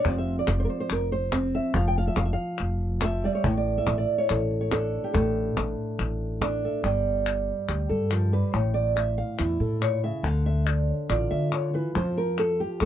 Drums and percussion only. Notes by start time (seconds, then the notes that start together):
0.05 cajon bass, cajon slap
0.47 cajon slap, clap
0.90 clap
1.32 cajon slap, clap
1.74 cajon bass, cajon slap
1.96 cajon slap
2.16 cajon slap, clap
2.58 clap
2.81 cajon slap
3.01 cajon slap, clap
3.44 cajon bass
3.87 cajon slap, clap
4.29 clap
4.51 cajon slap
4.72 cajon slap, clap
5.15 cajon bass, cajon slap
5.57 cajon slap, clap
5.99 clap
6.42 cajon slap, clap
7.26 clap
7.69 clap
8.11 clap
8.97 clap
9.39 clap
9.82 clap
10.67 clap
11.10 clap
11.52 clap
12.38 clap
12.80 clap